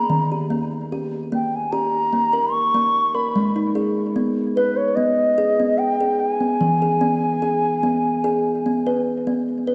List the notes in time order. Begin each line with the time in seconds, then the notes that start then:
Already playing: A#3 A#5
0.10 D#3
0.32 G4
0.50 A#3
0.92 G4
1.32 A#3 G5
1.56 G#5
1.72 G4 A#5
2.13 A#3
2.33 A#4
2.52 C#6
2.74 A#3
3.14 A#4 B5
3.36 G#3
3.56 D#4
3.75 G#4
4.16 B3
4.55 B4
4.77 C#5
4.96 B3 D#5
5.38 G#4
5.60 B3
5.78 G5
6.01 G#4
6.20 G5
6.31 G#5
6.40 B3
6.61 E3
6.82 G#4
7.01 B3
7.42 G#4
7.83 B3
8.24 G#4
8.66 B3
8.87 B4
9.27 B3
9.67 B4